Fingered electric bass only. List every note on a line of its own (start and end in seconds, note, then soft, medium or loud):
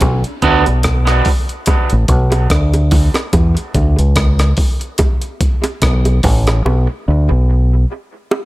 0.02 0.22 B1 loud
0.43 0.64 D2 loud
0.68 1.21 B1 medium
1.92 2.08 A1 medium
2.09 2.46 B1 medium
2.51 3.09 D2 medium
3.34 3.54 E2 loud
3.75 3.96 D2 loud
3.99 4.52 C#2 medium
5.82 6.20 B1 loud
6.24 6.61 A1 medium
6.66 6.86 B1 loud
7.08 7.28 D2 loud
7.31 7.84 B1 medium